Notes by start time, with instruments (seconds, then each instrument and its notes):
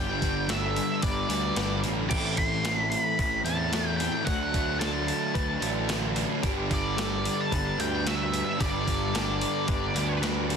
Already playing: picked electric bass G1, overdriven electric guitar G2 D3 G3 B3 D4, distorted electric guitar D4, clean electric guitar G4, lead electric guitar G5
0.21 overdriven electric guitar G3 B3 D4, kick, open hi-hat
0.48 distorted electric guitar G2, overdriven electric guitar D3 G3 B3 D4, clean electric guitar A4, lead electric guitar E5, snare, open hi-hat
0.76 distorted electric guitar D3 G3, open hi-hat
1.02 picked electric bass G1, distorted electric guitar G2 D3 G3, clean electric guitar B4, lead electric guitar D5, kick, open hi-hat
1.29 picked electric bass D2, overdriven electric guitar G3 B3 D4, open hi-hat
1.56 picked electric bass G1, distorted electric guitar G2, overdriven electric guitar D3 G3 B3 D4, clean electric guitar B4, snare, open hi-hat
1.83 picked electric bass A1, distorted electric guitar D3, overdriven electric guitar G3 B3 D4, snare, open hi-hat
2.09 picked electric bass A1, overdriven electric guitar A2 E3 A3 C4 E4, clean electric guitar G4, lead electric guitar D6, kick, crash
2.37 overdriven electric guitar A3 C4 E4, lead electric guitar C6, kick, open hi-hat
2.63 distorted electric guitar A2, overdriven electric guitar E3 A3 C4 E4, clean electric guitar A4, snare, open hi-hat
2.78 lead electric guitar B5
2.90 distorted electric guitar E3 A3, lead electric guitar B5, open hi-hat
3.18 picked electric bass A1, distorted electric guitar A2 E3 A3, clean electric guitar B4, kick, open hi-hat
3.44 picked electric bass E2, overdriven electric guitar A3 C4 E4, lead electric guitar A5, open hi-hat
3.71 distorted electric guitar A2, overdriven electric guitar E3 A3 C4 E4, clean electric guitar A4, snare, open hi-hat
3.97 distorted electric guitar E3, overdriven electric guitar A3 C4 E4, lead electric guitar G5, snare, open hi-hat
4.24 picked electric bass D2, overdriven electric guitar D3 F#3 A3 D4, clean electric guitar F#4, lead electric guitar F#5, kick, open hi-hat
4.52 overdriven electric guitar F#3 A3 D4, kick, open hi-hat
4.79 overdriven electric guitar D3 F#3 A3 D4, clean electric guitar A4, lead electric guitar A5, snare, open hi-hat
5.08 distorted electric guitar A3 D4, open hi-hat
5.34 picked electric bass D2, distorted electric guitar D3 A3 D4, clean electric guitar B4, kick, open hi-hat
5.60 picked electric bass A1, overdriven electric guitar F#3 A3 D4, open hi-hat
5.87 overdriven electric guitar D3 F#3 A3 D4, clean electric guitar B4, snare, open hi-hat
6.15 overdriven electric guitar F#3 A3 D4, snare, open hi-hat
6.41 picked electric bass G1, overdriven electric guitar G2 D3 G3 B3 D4, clean electric guitar G4, kick, open hi-hat
6.69 overdriven electric guitar G3 B3 D4, kick, open hi-hat
6.74 lead electric guitar D5
6.97 distorted electric guitar G2, overdriven electric guitar D3 G3 B3 D4, clean electric guitar A4, snare, open hi-hat
7.24 distorted electric guitar D3 G3, open hi-hat
7.41 lead electric guitar A5
7.50 picked electric bass G1, distorted electric guitar G2 D3 G3, clean electric guitar B4, kick, open hi-hat
7.77 picked electric bass D2, overdriven electric guitar G3 B3 D4, lead electric guitar G5, open hi-hat
8.04 distorted electric guitar G2, overdriven electric guitar D3 G3 B3 D4, clean electric guitar B4, lead electric guitar E5, snare, open hi-hat
8.31 distorted electric guitar D3, overdriven electric guitar G3 B3 D4, open hi-hat
8.58 picked electric bass G1, overdriven electric guitar G2 D3 G3 B3 D4, clean electric guitar G4, lead electric guitar D5, kick, open hi-hat
8.85 overdriven electric guitar G3 B3 D4, kick, open hi-hat
9.13 distorted electric guitar G2, overdriven electric guitar D3 G3 B3 D4, clean electric guitar A4, snare, open hi-hat
9.41 distorted electric guitar D3 G3, open hi-hat
9.67 picked electric bass G1, distorted electric guitar G2 D3 G3, clean electric guitar B4, kick, open hi-hat
9.94 picked electric bass D2, overdriven electric guitar G3 B3 D4, open hi-hat
10.20 distorted electric guitar G2, overdriven electric guitar D3 G3 B3 D4, clean electric guitar B4, snare, open hi-hat
10.48 distorted electric guitar D3, overdriven electric guitar G3 B3 D4, open hi-hat